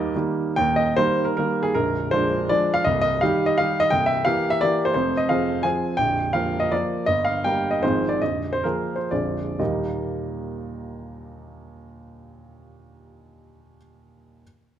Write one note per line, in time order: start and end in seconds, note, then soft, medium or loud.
0.00 0.16 D#2 medium
0.00 0.11 D#3 medium
0.00 0.11 G3 medium
0.00 0.11 A#3 medium
0.00 0.16 A#4 medium
0.00 0.16 D5 medium
0.00 0.14 D#5 medium
0.15 0.53 D#3 medium
0.15 0.53 G3 medium
0.15 0.54 A#3 medium
0.56 0.96 D#1 soft
0.56 0.96 D#2 medium
0.56 0.76 G5 medium
0.76 0.96 D#5 medium
0.97 1.34 D#3 soft
0.97 1.34 G3 soft
0.97 1.34 A#3 medium
0.97 1.24 C5 medium
1.25 1.35 A#4 medium
1.37 1.71 D#3 soft
1.37 1.71 G3 soft
1.37 1.71 A#3 soft
1.37 1.62 A#4 medium
1.63 1.74 G#4 medium
1.75 2.11 A#0 medium
1.75 2.11 A#1 medium
1.75 2.12 A#4 medium
2.11 2.47 F3 medium
2.11 2.47 G#3 soft
2.11 2.47 D4 medium
2.11 2.50 C5 medium
2.49 2.82 F3 soft
2.49 2.82 G#3 soft
2.49 2.82 D4 medium
2.49 2.73 D5 medium
2.74 2.85 F5 medium
2.84 3.20 C1 medium
2.84 3.21 C2 medium
2.84 3.00 D#5 medium
3.02 3.21 D#5 medium
3.21 3.55 D#3 medium
3.21 3.55 G3 medium
3.21 3.55 G4 medium
3.21 3.46 F5 medium
3.46 3.58 D#5 medium
3.58 3.89 D#3 soft
3.58 3.89 G3 soft
3.58 3.90 G4 medium
3.58 3.81 F5 medium
3.80 3.91 D#5 loud
3.90 4.25 C1 soft
3.90 4.26 C2 medium
3.90 4.08 G5 loud
4.06 4.25 E5 medium
4.25 4.59 E3 medium
4.25 4.59 A#3 medium
4.25 4.59 G4 medium
4.25 4.50 F5 medium
4.50 4.63 E5 medium
4.61 4.93 E3 soft
4.61 4.93 A#3 soft
4.61 4.93 G4 medium
4.61 4.85 D5 medium
4.85 4.93 C5 medium
4.94 5.29 F1 medium
4.94 5.29 F2 medium
4.94 5.18 C5 medium
5.17 5.30 D#5 medium
5.29 5.61 F3 soft
5.29 5.61 C4 soft
5.29 5.61 G#4 medium
5.29 5.64 F5 medium
5.63 5.95 F3 soft
5.63 5.95 C4 soft
5.63 5.95 G#4 soft
5.63 5.97 G#5 medium
5.97 6.33 A#0 medium
5.97 6.33 A#1 medium
5.97 6.34 G5 medium
6.33 6.68 F3 soft
6.33 6.68 A#3 medium
6.33 6.69 A#4 medium
6.33 6.59 F5 medium
6.60 6.72 D#5 medium
6.72 7.04 F3 soft
6.72 7.04 A#3 soft
6.72 7.04 A#4 soft
6.72 7.07 D5 medium
7.06 7.43 G1 soft
7.06 7.42 G2 soft
7.06 7.24 D#5 medium
7.25 7.43 F5 medium
7.44 7.80 G3 soft
7.44 7.80 A#3 soft
7.44 7.80 A#4 soft
7.44 7.70 G5 medium
7.71 7.83 D#5 medium
7.83 8.20 G#1 medium
7.83 8.20 G#2 soft
7.83 8.18 F3 soft
7.83 8.18 C4 soft
7.83 8.18 G#4 soft
7.83 8.08 C5 medium
8.09 8.21 D5 medium
8.22 8.63 A#0 soft
8.22 8.63 A#1 soft
8.22 8.52 D#5 medium
8.53 8.64 C5 medium
8.64 9.08 F3 soft
8.64 9.08 A#3 soft
8.64 9.08 G#4 soft
8.64 8.95 A#4 medium
8.96 9.11 C5 medium
9.11 9.59 A#0 soft
9.11 9.59 A#1 soft
9.11 9.56 F3 soft
9.11 9.57 C4 soft
9.11 9.57 G#4 soft
9.11 9.60 D5 medium
9.59 13.76 D#2 soft
9.59 13.76 A#2 soft
9.59 13.76 G3 soft
9.59 13.76 A#3 soft
9.59 13.77 D#4 soft
9.59 13.77 G4 soft
9.59 13.76 D#5 soft